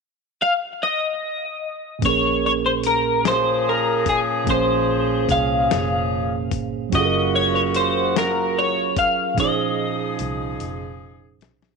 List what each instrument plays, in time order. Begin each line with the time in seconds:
0.42 clean electric guitar F5
0.83 clean electric guitar D#5
1.99 tine electric piano A#2 A#3, kick, closed hi-hat
2.03 fingered electric bass A#1, tine electric piano C#4 G#4, clean electric guitar C#5
2.09 tine electric piano A#4
2.46 clean electric guitar C#5
2.66 clean electric guitar C5
2.84 clean electric guitar A#4, closed hi-hat
3.25 horn section F3 C#4 G#4, clean electric guitar C5, snare, closed hi-hat
3.69 clean electric guitar A#4
4.06 clean electric guitar G#4, kick, closed hi-hat
4.44 tine electric piano A#2 A#3, kick, closed hi-hat
4.48 fingered electric bass A#1, tine electric piano C#4 G#4, clean electric guitar C5
4.54 tine electric piano C5
5.29 fingered electric bass C2, clean electric guitar F5, kick, closed hi-hat
5.71 fingered electric bass F1, snare, closed hi-hat
6.51 fingered electric bass G1, kick, closed hi-hat
6.89 horn section C#3 A#3 F#4, tine electric piano F#3 C#4, kick, closed hi-hat
6.94 fingered electric bass F#1, tine electric piano F4 G#4, clean electric guitar D#5
6.99 tine electric piano A4
7.05 tine electric piano A#4
7.36 clean electric guitar C#5
7.55 clean electric guitar C#5
7.74 clean electric guitar C5, closed hi-hat
8.16 clean electric guitar A#4, snare, closed hi-hat
8.59 clean electric guitar C#5
8.96 clean electric guitar F5, kick, closed hi-hat
9.34 tine electric piano A#2 F3, horn section F3 D#4 G#4, kick, closed hi-hat
9.38 tine electric piano C#4 D#4 G#4, clean electric guitar D#5
9.44 tine electric piano C5
10.19 fingered electric bass C2, closed hi-hat
10.60 fingered electric bass F1, closed hi-hat
11.41 fingered electric bass B1, snare, closed hi-hat
11.62 snare